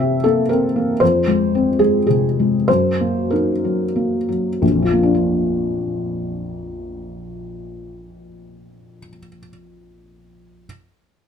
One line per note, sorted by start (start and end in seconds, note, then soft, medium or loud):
0.00 0.98 C3 medium
0.00 0.16 C4 soft
0.00 0.40 G4 soft
0.00 0.25 E5 medium
0.24 0.66 A#3 soft
0.24 0.50 A4 medium
0.49 0.91 C4 soft
0.49 1.00 A#4 medium
0.76 1.01 A#3 soft
1.00 2.63 F2 soft
1.00 1.79 C5 medium
1.27 1.69 G#3 soft
1.55 1.97 C4 soft
1.79 2.25 G#3 soft
1.79 2.05 G#4 medium
2.07 2.55 C3 soft
2.07 2.67 G#4 medium
2.40 2.69 G#3 soft
2.68 4.59 F#2 soft
2.68 3.31 C5 medium
3.01 3.51 A#3 soft
3.30 3.83 D#4 soft
3.30 4.28 A#4 soft
3.64 4.16 F#3 soft
3.96 4.49 A#3 soft
4.29 4.62 F#3 soft
4.62 8.97 A#1 soft
4.72 9.07 F2 soft
4.82 9.17 F3 soft
4.93 9.28 A#3 soft
5.03 9.38 D4 soft
5.14 9.49 F4 soft